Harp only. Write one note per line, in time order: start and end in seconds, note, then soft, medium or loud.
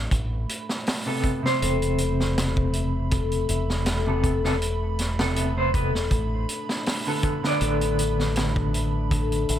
0.00 0.43 A4 loud
0.00 0.66 B4 medium
1.61 3.11 A4 loud
1.99 3.97 C5 loud
2.36 5.69 A3 medium
2.74 3.48 E5 medium
3.11 3.86 A4 medium
3.49 5.21 E5 loud
3.86 4.23 A4 medium
4.24 5.74 A4 loud
4.61 6.66 B4 medium
5.36 7.08 E5 loud
5.74 7.61 A4 medium
7.61 9.11 A4 loud
7.99 9.59 B4 medium
8.36 9.59 A3 medium
8.74 9.48 E5 medium
9.11 9.59 A4 medium
9.49 9.59 E5 loud